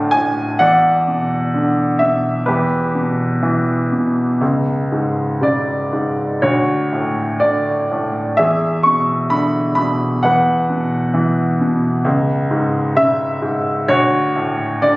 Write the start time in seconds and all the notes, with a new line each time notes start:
Already playing: D2 A2 D3 F#5 A5
0.11 A2 G#5
0.59 E2 D5 F#5
1.07 B2
1.54 D3
1.99 B2 E5
2.46 E2 G4 B4
2.95 B2
3.42 E3
3.92 B2
4.41 C#2
4.92 G#2
5.41 C#3 D5
5.92 G#2
6.42 D2 F#4 C#5
6.92 A2
7.40 D3 D5
7.91 A2
8.37 E2 G#4 E5
8.83 B2 C#6
9.30 D3 B5
9.75 B2 B5
10.23 E2 B4 F#5
10.70 B2
11.14 E3
11.60 B2
12.05 C#2
12.51 G#2
12.96 C#3 E5
13.42 G#2
13.88 D2 F#4 C#5
14.36 A2
14.82 D3 D5